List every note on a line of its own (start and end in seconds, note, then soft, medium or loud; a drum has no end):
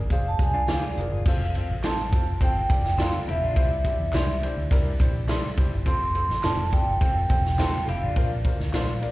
0.10 0.32 F1 loud
0.10 0.30 D4 medium
0.10 0.30 G#4 medium
0.10 0.31 C5 loud
0.10 0.25 F5 loud
0.10 kick medium
0.10 closed hi-hat medium
0.10 tambourine soft
0.10 muted conga medium
0.10 low conga medium
0.28 0.42 A5 loud
0.39 0.61 C2 medium
0.39 0.59 D4 medium
0.39 0.59 G#4 medium
0.39 0.59 C5 medium
0.39 0.71 G#5 loud
0.39 kick loud
0.39 closed hi-hat medium
0.39 tambourine medium
0.39 muted conga soft
0.54 0.68 D4 medium
0.54 0.68 F4 medium
0.67 0.79 D2 medium
0.67 0.88 D4 medium
0.67 0.79 F4 medium
0.67 0.82 G4 loud
0.67 0.80 G#4 medium
0.67 0.88 G#4 medium
0.67 0.88 C5 medium
0.67 0.80 D5 loud
0.67 snare loud
0.67 clap medium
0.67 closed hi-hat loud
0.67 tambourine medium
0.67 high conga medium
0.72 0.85 F5 medium
0.82 1.24 F4 medium
0.82 1.24 G#4 medium
0.82 1.11 D5 medium
0.97 1.08 F1 medium
0.97 1.17 D4 medium
0.97 1.17 G#4 medium
0.97 1.17 A#4 medium
0.97 closed hi-hat medium
0.97 tambourine medium
0.97 high conga medium
1.11 1.22 G1 medium
1.26 1.58 F1 medium
1.26 1.46 C4 medium
1.26 1.46 F4 medium
1.26 1.46 A4 loud
1.26 1.46 C5 loud
1.26 1.86 F5 medium
1.26 kick loud
1.26 crash loud
1.26 tambourine soft
1.55 1.74 C4 medium
1.55 1.74 F4 medium
1.55 1.75 A4 medium
1.55 1.75 C5 medium
1.55 ride medium
1.55 tambourine soft
1.55 muted conga soft
1.70 2.13 A1 loud
1.83 2.03 C4 medium
1.83 1.95 F4 medium
1.83 2.03 F4 medium
1.83 2.03 A4 medium
1.83 1.95 A4 medium
1.83 2.03 C5 medium
1.83 1.95 C5 medium
1.83 2.38 A5 loud
1.83 snare loud
1.83 clap medium
1.83 ride medium
1.83 tambourine loud
1.83 high conga medium
2.12 2.34 F1 medium
2.12 2.32 C4 medium
2.12 2.32 F4 medium
2.12 2.32 A4 medium
2.12 2.32 C5 medium
2.12 kick loud
2.12 ride medium
2.12 tambourine medium
2.41 2.62 G1 loud
2.41 2.60 C4 loud
2.41 2.60 F4 medium
2.41 2.60 A4 medium
2.41 2.60 C5 loud
2.41 3.02 G5 loud
2.41 kick loud
2.41 ride medium
2.41 tambourine medium
2.41 muted conga medium
2.70 3.02 F1 loud
2.70 2.89 C4 medium
2.70 2.89 F4 medium
2.70 2.89 A4 medium
2.70 2.89 D5 medium
2.70 kick loud
2.70 ride medium
2.70 tambourine medium
2.70 low conga medium
2.85 snare soft
2.98 3.17 C4 medium
2.98 3.17 F4 medium
2.98 3.10 F4 medium
2.98 3.18 A4 medium
2.98 3.12 A4 medium
2.98 3.10 A4 medium
2.98 3.12 C5 medium
2.98 3.11 C5 medium
2.98 3.18 D5 medium
2.98 3.29 F5 medium
2.98 snare loud
2.98 clap medium
2.98 ride loud
2.98 tambourine medium
2.98 high conga medium
3.13 3.27 F4 medium
3.13 3.27 A4 medium
3.27 3.38 E1 medium
3.27 3.46 C4 medium
3.27 3.41 E4 medium
3.27 3.46 F4 medium
3.27 3.41 G4 medium
3.27 3.46 A4 medium
3.27 3.46 C5 medium
3.27 4.40 E5 medium
3.27 ride medium
3.27 tambourine medium
3.27 high conga medium
3.41 3.57 A#1 medium
3.41 3.69 D4 medium
3.41 3.69 F4 medium
3.56 3.88 C2 loud
3.56 3.75 D4 loud
3.56 3.75 E4 loud
3.56 3.75 G4 medium
3.56 3.75 C5 loud
3.56 kick loud
3.56 ride medium
3.56 tambourine soft
3.85 4.04 D4 medium
3.85 4.04 E4 medium
3.85 4.04 G4 medium
3.85 4.04 C5 medium
3.85 kick medium
3.85 ride medium
3.85 tambourine soft
3.85 muted conga medium
3.99 4.10 E2 loud
4.13 4.45 C2 medium
4.13 4.24 D4 medium
4.13 4.33 D4 loud
4.13 4.33 E4 medium
4.13 4.25 E4 medium
4.13 4.33 G4 medium
4.13 4.33 C5 loud
4.13 4.25 C5 medium
4.13 snare loud
4.13 clap loud
4.13 ride medium
4.13 tambourine loud
4.13 high conga medium
4.42 4.62 D4 loud
4.42 4.62 E4 medium
4.42 4.62 G4 medium
4.42 4.62 C5 loud
4.42 ride medium
4.42 tambourine medium
4.56 4.67 D2 medium
4.71 4.92 C2 loud
4.71 4.90 D4 loud
4.71 4.90 E4 loud
4.71 4.90 G4 loud
4.71 4.90 A#4 loud
4.71 kick loud
4.71 ride medium
4.71 tambourine medium
4.71 muted conga medium
4.99 5.32 A#1 loud
4.99 5.19 D4 medium
4.99 5.19 E4 medium
4.99 5.19 G4 medium
4.99 5.19 C5 loud
4.99 kick loud
4.99 ride medium
4.99 tambourine medium
4.99 muted conga soft
5.27 5.39 D4 medium
5.27 5.48 D4 loud
5.27 5.40 E4 medium
5.27 5.48 E4 medium
5.27 5.48 G4 medium
5.27 5.48 A4 loud
5.27 5.40 C5 medium
5.27 snare loud
5.27 clap medium
5.27 ride medium
5.27 tambourine medium
5.27 high conga medium
5.57 5.68 C2 loud
5.57 5.76 D4 medium
5.57 5.76 E4 medium
5.57 5.77 G4 medium
5.57 5.77 C5 medium
5.57 kick loud
5.57 open hi-hat soft
5.57 ride medium
5.57 tambourine medium
5.57 high conga medium
5.71 5.86 G1 loud
5.86 6.18 F1 loud
5.86 6.05 C4 loud
5.86 6.05 F4 medium
5.86 6.05 A4 medium
5.86 6.05 C5 loud
5.86 6.46 C6 loud
5.86 kick loud
5.86 hi-hat pedal medium
5.86 ride medium
5.86 tambourine soft
6.15 6.34 C4 medium
6.15 6.34 F4 medium
6.15 6.34 A4 medium
6.15 6.34 C5 medium
6.15 ride medium
6.15 tambourine soft
6.15 muted conga medium
6.29 6.40 A1 medium
6.29 snare soft
6.43 6.76 F1 loud
6.43 6.63 C4 medium
6.43 6.54 F4 medium
6.43 6.63 F4 medium
6.43 6.55 A4 medium
6.43 6.63 A4 medium
6.43 6.55 C5 loud
6.43 6.63 D5 medium
6.43 6.74 A5 loud
6.43 snare loud
6.43 clap loud
6.43 ride medium
6.43 tambourine loud
6.43 high conga medium
6.72 6.91 C4 medium
6.72 6.91 F4 medium
6.72 6.91 A4 medium
6.72 6.92 D5 medium
6.72 7.84 G5 loud
6.72 kick medium
6.72 ride medium
6.72 tambourine medium
6.87 6.97 G1 loud
7.01 7.23 F1 loud
7.01 7.20 C4 loud
7.01 7.20 F4 medium
7.01 7.20 A4 medium
7.01 7.20 C5 loud
7.01 kick loud
7.01 ride medium
7.01 tambourine medium
7.01 muted conga medium
7.29 7.62 E1 loud
7.29 7.49 C4 medium
7.29 7.49 F4 medium
7.29 7.49 A4 medium
7.29 7.49 C5 medium
7.29 kick loud
7.29 ride medium
7.29 tambourine medium
7.29 muted conga soft
7.29 low conga medium
7.45 snare soft
7.58 7.78 C4 loud
7.58 7.70 F4 medium
7.58 7.78 F4 medium
7.58 7.78 A4 medium
7.58 7.72 A4 medium
7.58 7.70 A4 medium
7.58 7.73 C5 medium
7.58 7.78 C5 loud
7.58 7.71 C5 loud
7.58 snare loud
7.58 clap medium
7.58 ride loud
7.58 tambourine medium
7.58 high conga medium
7.74 7.88 F4 medium
7.74 7.87 A4 medium
7.87 7.98 F1 medium
7.87 8.07 C4 medium
7.87 8.02 E4 medium
7.87 8.07 F4 medium
7.87 8.01 G4 medium
7.87 8.07 A4 medium
7.87 8.07 C5 medium
7.87 9.12 F5 medium
7.87 ride medium
7.87 tambourine medium
7.87 high conga medium
8.02 8.13 A1 medium
8.02 8.30 D4 medium
8.02 8.29 F4 medium
8.16 8.48 A#1 loud
8.16 8.35 D4 loud
8.16 8.35 F4 loud
8.16 8.35 A#4 loud
8.16 8.35 C5 loud
8.16 kick loud
8.16 ride medium
8.44 8.64 D4 medium
8.44 8.64 F4 medium
8.44 8.64 A#4 medium
8.44 8.64 C5 medium
8.44 kick loud
8.44 ride soft
8.44 tambourine soft
8.44 muted conga medium
8.59 8.70 D2 medium
8.59 snare soft
8.73 9.05 A#1 loud
8.73 8.93 D4 loud
8.73 8.85 D4 medium
8.73 8.93 F4 medium
8.73 8.85 F4 loud
8.73 8.93 A#4 medium
8.73 8.93 C5 loud
8.73 8.86 C5 loud
8.73 snare loud
8.73 clap loud
8.73 ride medium
8.73 tambourine loud
8.73 high conga medium
9.02 9.12 D4 loud
9.02 9.12 F4 medium
9.02 9.12 A#4 medium
9.02 9.12 D5 loud
9.02 ride medium
9.02 tambourine medium